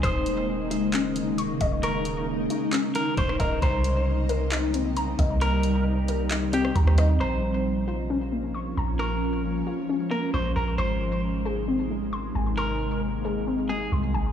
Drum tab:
HH |x-x---x-x-x-x-x-|x-x---x-x-x-x-x-|x-x---x-x-x-x-x-|x-x---x-x-x-x-x-|
CP |--------x-------|--------x-------|--------x-------|--------x-------|
SD |----------------|-------------r--|----------------|-----------r-rr-|
BD |o-------------o-|------------o-o-|o-------------o-|------------o---|

HH |----------------|----------------|----------------|----------------|
CP |----------------|----------------|----------------|----------------|
SD |----------------|----------------|----------------|----------------|
BD |----------------|----------------|----------------|----------------|